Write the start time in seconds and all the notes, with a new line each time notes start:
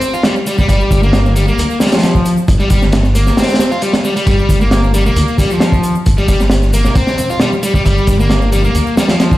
Already playing: C4
0.01 closed hi-hat, shaker
0.13 F4, shaker
0.23 G3, snare, closed hi-hat, shaker
0.36 shaker
0.46 G3, closed hi-hat, shaker
0.58 G3, kick, shaker
0.69 G1 G3, kick, closed hi-hat, shaker
0.80 shaker
0.91 G1, kick, closed hi-hat, shaker
1.03 A#3, shaker
1.13 snare, closed hi-hat, shaker
1.26 shaker
1.36 G3, closed hi-hat, shaker
1.48 A#3, shaker
1.58 D2, closed hi-hat, shaker
1.70 shaker
1.80 G3, snare, closed hi-hat, shaker
1.87 snare, closed hi-hat
1.92 F3, snare, closed hi-hat, shaker
1.98 snare, closed hi-hat
2.03 snare, closed hi-hat, shaker
2.15 kick, shaker
2.26 closed hi-hat, shaker
2.37 shaker
2.48 G1, kick, closed hi-hat, shaker
2.60 G3, shaker
2.70 G1 G3, kick, closed hi-hat, shaker
2.82 snare, shaker
2.92 snare, closed hi-hat, shaker
3.03 snare, shaker
3.15 A#3, closed hi-hat, shaker
3.27 snare, shaker
3.37 C4, snare, closed hi-hat, shaker
3.42 snare, closed hi-hat
3.48 snare, closed hi-hat, shaker
3.54 snare, closed hi-hat
3.59 snare, closed hi-hat, shaker
3.71 F4, shaker
3.82 G3, closed hi-hat, shaker
3.93 snare, closed hi-hat, shaker
4.05 G3, shaker
4.16 G3, closed hi-hat, shaker
4.27 G1 G3, kick, closed hi-hat, shaker
4.39 shaker
4.49 G1, kick, closed hi-hat, shaker
4.61 A#3, shaker
4.71 snare, closed hi-hat, shaker
4.84 shaker
4.94 G3, closed hi-hat, high conga, shaker
5.06 A#3, low conga, shaker
5.16 D2, closed hi-hat, shaker
5.28 shaker
5.38 G3, kick, closed hi-hat, high conga, shaker
5.50 F3, shaker
5.60 snare, closed hi-hat, shaker
5.72 kick, high conga, shaker
5.83 closed hi-hat, shaker
5.95 shaker
6.06 G1, kick, closed hi-hat, shaker
6.18 G3, shaker
6.28 G1 G3, kick, closed hi-hat, shaker
6.40 snare, shaker
6.50 snare, closed hi-hat, shaker
6.62 snare, shaker
6.73 A#3, closed hi-hat, high conga, shaker
6.85 snare, low conga, shaker
6.95 C4, kick, closed hi-hat, shaker
7.07 snare, shaker
7.18 closed hi-hat, high conga, low conga, shaker
7.30 F4, shaker
7.40 G3, snare, closed hi-hat, low conga, shaker
7.52 high conga, shaker
7.63 G3, closed hi-hat, shaker
7.74 G3, kick, shaker
7.85 G1 G3, kick, closed hi-hat, shaker
7.97 shaker
8.07 G1, kick, closed hi-hat, shaker
8.19 A#3, shaker
8.30 snare, closed hi-hat, shaker
8.42 shaker
8.52 G3, closed hi-hat, high conga, shaker
8.64 A#3, low conga, shaker
8.75 D2, closed hi-hat, shaker
8.87 shaker
8.97 G3, snare, closed hi-hat, high conga, shaker
9.09 F3, snare, closed hi-hat, shaker
9.20 snare, closed hi-hat, shaker
9.31 kick, high conga, shaker